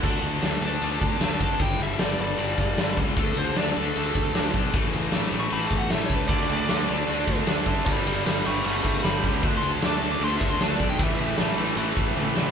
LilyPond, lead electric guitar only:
\new Staff \with { instrumentName = "Lead electric guitar" } { \time 4/4 \key d \major \tempo 4 = 153 r4. a''2 a''8 | g''8 e''8 d''8 d''2 r8 | a'8 c''8 d''8 a'2 r8 | r4 \tuplet 3/2 { r4 cis'''8 b''8 a''8 fis''8 e''8 cis''8 b'8 } |
d''2. r4 | <d'' b''>8 <d'' b''>8 <d'' b''>8 <e'' cis'''>8 <e'' cis'''>8 <e'' cis'''>8 b''8 r8 | \tuplet 3/2 { r8 c'''8 r8 d'''8 a''8 d'''8 c'''8 e''8 c'''8 a''8 d''8 g''8 } | \tuplet 3/2 { e''8 e''8. r16 } r2. | }